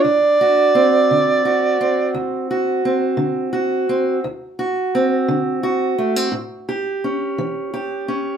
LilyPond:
<<
  \new Staff \with { instrumentName = "Harmonica" } { \time 12/8 \key d \mixolydian \tempo 4. = 57 d''2. r2. | r1. | }
  \new Staff \with { instrumentName = "Steel-string acoustic guitar" } { \time 12/8 \key d \mixolydian << { r8 fis'8 c'4 fis'8 c'4 fis'8 c'4 fis'8 c'8 | r8 fis'8 c'4 fis'8 a16 c'16 r8 g'8 cis'4 g'8 cis'8 | } \\ { d,4 r8 d4 r8 d,4 r8 d4 r8 | d,4 r8 d4 r8 a,4 r8 e4 r8 | } >> }
>>